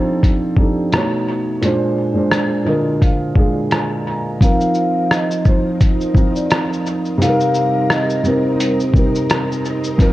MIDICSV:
0, 0, Header, 1, 5, 480
1, 0, Start_track
1, 0, Key_signature, -3, "minor"
1, 0, Tempo, 697674
1, 1115, Time_signature, 4, 2, 24, 8
1, 6968, End_track
2, 0, Start_track
2, 0, Title_t, "Vibraphone"
2, 0, Program_c, 0, 11
2, 3043, Note_on_c, 0, 77, 95
2, 3519, Note_off_c, 0, 77, 0
2, 3528, Note_on_c, 0, 75, 82
2, 3738, Note_off_c, 0, 75, 0
2, 3762, Note_on_c, 0, 72, 72
2, 3975, Note_off_c, 0, 72, 0
2, 4007, Note_on_c, 0, 72, 80
2, 4352, Note_off_c, 0, 72, 0
2, 4373, Note_on_c, 0, 74, 66
2, 4467, Note_off_c, 0, 74, 0
2, 4969, Note_on_c, 0, 77, 96
2, 5414, Note_off_c, 0, 77, 0
2, 5447, Note_on_c, 0, 75, 86
2, 5658, Note_off_c, 0, 75, 0
2, 5697, Note_on_c, 0, 72, 83
2, 5903, Note_off_c, 0, 72, 0
2, 5936, Note_on_c, 0, 72, 68
2, 6276, Note_off_c, 0, 72, 0
2, 6298, Note_on_c, 0, 70, 69
2, 6390, Note_off_c, 0, 70, 0
2, 6968, End_track
3, 0, Start_track
3, 0, Title_t, "Felt piano"
3, 0, Program_c, 1, 0
3, 0, Control_c, 1, 64, 127
3, 0, Note_on_c, 1, 53, 84
3, 0, Note_on_c, 1, 60, 78
3, 0, Note_on_c, 1, 62, 72
3, 0, Note_on_c, 1, 63, 76
3, 0, Note_on_c, 1, 67, 64
3, 0, Note_on_c, 1, 69, 105
3, 0, Note_on_c, 1, 72, 91
3, 239, Note_off_c, 1, 53, 0
3, 243, Note_off_c, 1, 60, 0
3, 245, Note_off_c, 1, 62, 0
3, 248, Note_off_c, 1, 63, 0
3, 251, Note_off_c, 1, 67, 0
3, 254, Note_off_c, 1, 72, 0
3, 386, Note_on_c, 1, 53, 64
3, 392, Note_on_c, 1, 60, 72
3, 395, Note_on_c, 1, 62, 76
3, 400, Note_on_c, 1, 63, 75
3, 408, Note_on_c, 1, 67, 69
3, 413, Note_off_c, 1, 69, 0
3, 413, Note_on_c, 1, 69, 76
3, 630, Note_off_c, 1, 53, 0
3, 634, Note_off_c, 1, 60, 0
3, 635, Note_off_c, 1, 62, 0
3, 635, Note_on_c, 1, 47, 80
3, 638, Note_off_c, 1, 63, 0
3, 641, Note_off_c, 1, 67, 0
3, 644, Note_off_c, 1, 69, 0
3, 645, Control_c, 1, 64, 0
3, 646, Note_on_c, 1, 57, 82
3, 653, Note_on_c, 1, 63, 82
3, 664, Note_on_c, 1, 73, 96
3, 753, Control_c, 1, 64, 127
3, 1029, Note_off_c, 1, 47, 0
3, 1035, Note_off_c, 1, 57, 0
3, 1038, Note_off_c, 1, 63, 0
3, 1044, Note_off_c, 1, 73, 0
3, 1112, Note_on_c, 1, 46, 104
3, 1120, Note_on_c, 1, 56, 89
3, 1124, Control_c, 1, 64, 0
3, 1132, Note_on_c, 1, 62, 87
3, 1141, Note_on_c, 1, 72, 107
3, 1234, Control_c, 1, 64, 127
3, 1354, Note_off_c, 1, 46, 0
3, 1358, Note_off_c, 1, 56, 0
3, 1364, Note_off_c, 1, 62, 0
3, 1369, Note_off_c, 1, 72, 0
3, 1473, Note_on_c, 1, 46, 75
3, 1479, Note_on_c, 1, 56, 81
3, 1490, Note_on_c, 1, 62, 73
3, 1499, Note_on_c, 1, 72, 89
3, 1721, Note_off_c, 1, 46, 0
3, 1724, Note_off_c, 1, 56, 0
3, 1730, Note_off_c, 1, 62, 0
3, 1734, Note_off_c, 1, 72, 0
3, 1822, Note_on_c, 1, 46, 79
3, 1832, Note_on_c, 1, 56, 59
3, 1837, Note_on_c, 1, 75, 67
3, 1840, Note_on_c, 1, 50, 74
3, 1851, Note_on_c, 1, 70, 92
3, 2059, Note_off_c, 1, 75, 0
3, 2080, Note_on_c, 1, 77, 71
3, 2158, Note_off_c, 1, 46, 0
3, 2163, Note_off_c, 1, 56, 0
3, 2167, Note_off_c, 1, 50, 0
3, 2173, Note_off_c, 1, 70, 0
3, 2301, Note_off_c, 1, 77, 0
3, 2304, Note_on_c, 1, 46, 70
3, 2315, Note_on_c, 1, 56, 78
3, 2319, Note_on_c, 1, 77, 57
3, 2327, Note_on_c, 1, 62, 64
3, 2333, Note_on_c, 1, 68, 87
3, 2540, Note_off_c, 1, 77, 0
3, 2551, Note_on_c, 1, 80, 65
3, 2776, Note_off_c, 1, 80, 0
3, 2791, Note_off_c, 1, 46, 0
3, 2797, Note_off_c, 1, 56, 0
3, 2798, Note_on_c, 1, 82, 60
3, 2803, Note_off_c, 1, 62, 0
3, 2806, Note_off_c, 1, 68, 0
3, 3019, Note_off_c, 1, 82, 0
3, 3029, Note_on_c, 1, 53, 87
3, 3038, Note_on_c, 1, 60, 81
3, 3043, Control_c, 1, 64, 0
3, 3048, Note_on_c, 1, 63, 81
3, 3056, Note_on_c, 1, 70, 93
3, 3164, Control_c, 1, 64, 127
3, 3514, Note_off_c, 1, 53, 0
3, 3518, Note_off_c, 1, 60, 0
3, 3523, Note_off_c, 1, 63, 0
3, 3527, Note_off_c, 1, 70, 0
3, 3747, Note_on_c, 1, 53, 71
3, 3756, Note_on_c, 1, 60, 54
3, 3766, Note_on_c, 1, 63, 65
3, 3775, Note_on_c, 1, 72, 84
3, 4081, Note_off_c, 1, 53, 0
3, 4085, Note_off_c, 1, 60, 0
3, 4090, Note_off_c, 1, 63, 0
3, 4095, Note_off_c, 1, 72, 0
3, 4220, Note_on_c, 1, 53, 63
3, 4231, Note_on_c, 1, 60, 68
3, 4239, Note_on_c, 1, 63, 70
3, 4250, Note_on_c, 1, 65, 76
3, 4709, Note_off_c, 1, 53, 0
3, 4715, Note_off_c, 1, 60, 0
3, 4719, Note_off_c, 1, 63, 0
3, 4724, Note_off_c, 1, 65, 0
3, 4938, Note_on_c, 1, 48, 92
3, 4950, Note_on_c, 1, 60, 76
3, 4958, Note_on_c, 1, 63, 82
3, 4964, Control_c, 1, 64, 0
3, 4968, Note_on_c, 1, 69, 71
3, 5011, Note_off_c, 1, 69, 0
3, 5013, Note_on_c, 1, 70, 108
3, 5081, Control_c, 1, 64, 127
3, 5428, Note_off_c, 1, 48, 0
3, 5434, Note_off_c, 1, 60, 0
3, 5438, Note_off_c, 1, 63, 0
3, 5466, Note_off_c, 1, 70, 0
3, 5666, Note_on_c, 1, 48, 75
3, 5675, Note_on_c, 1, 60, 70
3, 5685, Note_on_c, 1, 63, 61
3, 5694, Note_on_c, 1, 70, 81
3, 6000, Note_off_c, 1, 48, 0
3, 6005, Note_off_c, 1, 60, 0
3, 6010, Note_off_c, 1, 63, 0
3, 6014, Note_off_c, 1, 70, 0
3, 6153, Note_on_c, 1, 48, 81
3, 6159, Note_on_c, 1, 60, 68
3, 6172, Note_on_c, 1, 63, 75
3, 6181, Note_on_c, 1, 70, 81
3, 6636, Note_off_c, 1, 48, 0
3, 6639, Note_off_c, 1, 60, 0
3, 6645, Note_off_c, 1, 63, 0
3, 6650, Note_off_c, 1, 70, 0
3, 6866, Note_on_c, 1, 53, 100
3, 6874, Note_on_c, 1, 60, 107
3, 6883, Note_on_c, 1, 63, 102
3, 6884, Control_c, 1, 64, 0
3, 6893, Note_on_c, 1, 70, 117
3, 6968, Note_off_c, 1, 53, 0
3, 6968, Note_off_c, 1, 60, 0
3, 6968, Note_off_c, 1, 63, 0
3, 6968, Note_off_c, 1, 70, 0
3, 6968, End_track
4, 0, Start_track
4, 0, Title_t, "String machine"
4, 0, Program_c, 2, 50
4, 3029, Note_on_c, 2, 63, 78
4, 3030, Note_on_c, 2, 60, 69
4, 3030, Note_on_c, 2, 70, 92
4, 3031, Note_on_c, 2, 53, 77
4, 4933, Note_off_c, 2, 63, 0
4, 4934, Note_off_c, 2, 53, 0
4, 4953, Note_on_c, 2, 63, 83
4, 4957, Note_on_c, 2, 55, 80
4, 6856, Note_off_c, 2, 55, 0
4, 6868, Note_on_c, 2, 53, 77
4, 6968, Note_off_c, 2, 53, 0
4, 6968, Note_off_c, 2, 60, 0
4, 6968, Note_off_c, 2, 63, 0
4, 6968, Note_off_c, 2, 70, 0
4, 6968, End_track
5, 0, Start_track
5, 0, Title_t, "Drums"
5, 158, Note_on_c, 9, 36, 75
5, 163, Note_on_c, 9, 42, 65
5, 227, Note_off_c, 9, 36, 0
5, 232, Note_off_c, 9, 42, 0
5, 389, Note_on_c, 9, 36, 82
5, 458, Note_off_c, 9, 36, 0
5, 636, Note_on_c, 9, 42, 53
5, 644, Note_on_c, 9, 37, 104
5, 705, Note_off_c, 9, 42, 0
5, 713, Note_off_c, 9, 37, 0
5, 1119, Note_on_c, 9, 42, 60
5, 1188, Note_off_c, 9, 42, 0
5, 1594, Note_on_c, 9, 37, 100
5, 1604, Note_on_c, 9, 42, 59
5, 1662, Note_off_c, 9, 37, 0
5, 1672, Note_off_c, 9, 42, 0
5, 2077, Note_on_c, 9, 36, 80
5, 2079, Note_on_c, 9, 42, 63
5, 2145, Note_off_c, 9, 36, 0
5, 2148, Note_off_c, 9, 42, 0
5, 2308, Note_on_c, 9, 36, 79
5, 2377, Note_off_c, 9, 36, 0
5, 2553, Note_on_c, 9, 42, 52
5, 2561, Note_on_c, 9, 37, 99
5, 2622, Note_off_c, 9, 42, 0
5, 2629, Note_off_c, 9, 37, 0
5, 3033, Note_on_c, 9, 36, 109
5, 3041, Note_on_c, 9, 42, 65
5, 3041, Note_on_c, 9, 82, 70
5, 3102, Note_off_c, 9, 36, 0
5, 3110, Note_off_c, 9, 42, 0
5, 3110, Note_off_c, 9, 82, 0
5, 3169, Note_on_c, 9, 82, 47
5, 3238, Note_off_c, 9, 82, 0
5, 3264, Note_on_c, 9, 82, 45
5, 3333, Note_off_c, 9, 82, 0
5, 3515, Note_on_c, 9, 37, 109
5, 3525, Note_on_c, 9, 42, 66
5, 3525, Note_on_c, 9, 82, 60
5, 3584, Note_off_c, 9, 37, 0
5, 3594, Note_off_c, 9, 42, 0
5, 3594, Note_off_c, 9, 82, 0
5, 3652, Note_on_c, 9, 82, 45
5, 3721, Note_off_c, 9, 82, 0
5, 3748, Note_on_c, 9, 82, 47
5, 3750, Note_on_c, 9, 36, 89
5, 3817, Note_off_c, 9, 82, 0
5, 3819, Note_off_c, 9, 36, 0
5, 3994, Note_on_c, 9, 36, 88
5, 3995, Note_on_c, 9, 42, 66
5, 3995, Note_on_c, 9, 82, 69
5, 4063, Note_off_c, 9, 36, 0
5, 4064, Note_off_c, 9, 42, 0
5, 4064, Note_off_c, 9, 82, 0
5, 4132, Note_on_c, 9, 82, 46
5, 4201, Note_off_c, 9, 82, 0
5, 4228, Note_on_c, 9, 36, 88
5, 4241, Note_on_c, 9, 82, 49
5, 4297, Note_off_c, 9, 36, 0
5, 4310, Note_off_c, 9, 82, 0
5, 4373, Note_on_c, 9, 82, 56
5, 4442, Note_off_c, 9, 82, 0
5, 4475, Note_on_c, 9, 42, 57
5, 4475, Note_on_c, 9, 82, 52
5, 4482, Note_on_c, 9, 37, 109
5, 4544, Note_off_c, 9, 42, 0
5, 4544, Note_off_c, 9, 82, 0
5, 4551, Note_off_c, 9, 37, 0
5, 4630, Note_on_c, 9, 82, 45
5, 4699, Note_off_c, 9, 82, 0
5, 4721, Note_on_c, 9, 82, 51
5, 4789, Note_off_c, 9, 82, 0
5, 4850, Note_on_c, 9, 82, 49
5, 4919, Note_off_c, 9, 82, 0
5, 4965, Note_on_c, 9, 42, 58
5, 4965, Note_on_c, 9, 82, 62
5, 5034, Note_off_c, 9, 42, 0
5, 5034, Note_off_c, 9, 82, 0
5, 5093, Note_on_c, 9, 82, 50
5, 5161, Note_off_c, 9, 82, 0
5, 5190, Note_on_c, 9, 82, 44
5, 5259, Note_off_c, 9, 82, 0
5, 5435, Note_on_c, 9, 37, 110
5, 5445, Note_on_c, 9, 42, 64
5, 5445, Note_on_c, 9, 82, 61
5, 5504, Note_off_c, 9, 37, 0
5, 5514, Note_off_c, 9, 42, 0
5, 5514, Note_off_c, 9, 82, 0
5, 5572, Note_on_c, 9, 82, 41
5, 5641, Note_off_c, 9, 82, 0
5, 5673, Note_on_c, 9, 82, 49
5, 5742, Note_off_c, 9, 82, 0
5, 5919, Note_on_c, 9, 42, 78
5, 5919, Note_on_c, 9, 82, 76
5, 5988, Note_off_c, 9, 42, 0
5, 5988, Note_off_c, 9, 82, 0
5, 6054, Note_on_c, 9, 82, 46
5, 6123, Note_off_c, 9, 82, 0
5, 6149, Note_on_c, 9, 36, 85
5, 6163, Note_on_c, 9, 82, 46
5, 6218, Note_off_c, 9, 36, 0
5, 6232, Note_off_c, 9, 82, 0
5, 6298, Note_on_c, 9, 82, 56
5, 6366, Note_off_c, 9, 82, 0
5, 6397, Note_on_c, 9, 42, 56
5, 6397, Note_on_c, 9, 82, 54
5, 6405, Note_on_c, 9, 37, 105
5, 6466, Note_off_c, 9, 42, 0
5, 6466, Note_off_c, 9, 82, 0
5, 6473, Note_off_c, 9, 37, 0
5, 6549, Note_on_c, 9, 82, 45
5, 6617, Note_off_c, 9, 82, 0
5, 6640, Note_on_c, 9, 82, 49
5, 6709, Note_off_c, 9, 82, 0
5, 6769, Note_on_c, 9, 82, 48
5, 6838, Note_off_c, 9, 82, 0
5, 6873, Note_on_c, 9, 36, 97
5, 6880, Note_on_c, 9, 42, 69
5, 6880, Note_on_c, 9, 82, 67
5, 6942, Note_off_c, 9, 36, 0
5, 6949, Note_off_c, 9, 42, 0
5, 6949, Note_off_c, 9, 82, 0
5, 6968, End_track
0, 0, End_of_file